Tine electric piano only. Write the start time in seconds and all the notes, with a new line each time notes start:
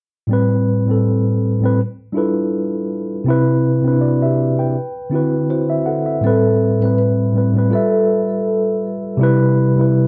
0.27 A2 G3
0.31 C4 B4
0.85 A2 G3 C4
0.91 A4
1.60 A2 G3 C4
1.66 B4
2.12 G3 D4 E4 F4
2.17 A4 B4
3.24 C3 C4
3.28 E4 B4
3.82 C3 C4 D4
3.88 B4
3.92 E4
4.01 F#4 D5
4.22 G4 E5
4.59 B4 G5
5.10 D3 C4 E4
5.14 F#4 B4
5.50 E4 C5
5.70 E5
5.86 A4 F#5
6.06 E5
6.21 A2 G3 C4
6.27 B4
6.79 A2 G3 C4
6.85 B4
7.32 A2 G3
7.36 C4 B4
7.53 A2 G3 C4
7.58 B4
7.69 G3 F4 A4
7.74 B4 E5
9.17 C3 G3 E4
9.23 B4
9.75 C3 G3
9.79 E4 B4